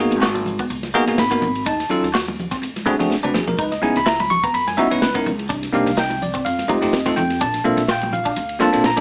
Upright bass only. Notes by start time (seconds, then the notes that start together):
0.11 G#1
0.70 C#2
0.94 muted upright bass stroke
1.07 G#1
1.18 G#1
1.42 G#1
1.66 D#2
1.90 D#2
2.03 D#2
2.62 D2
2.99 D2
3.10 D2
3.35 D2
3.59 C#2
3.83 C#2
3.96 C#2
4.54 F#2
4.79 muted upright bass stroke
4.92 C#2
5.03 C#2
5.26 C#2
5.50 C2
5.74 C2
5.86 C2
6.46 F2
6.69 muted upright bass stroke
6.83 F2
6.93 F2
7.17 F2
7.41 A#1
7.65 A#1
7.77 A#1
8.37 D2
8.61 muted upright bass stroke
8.73 A#1
8.84 A#1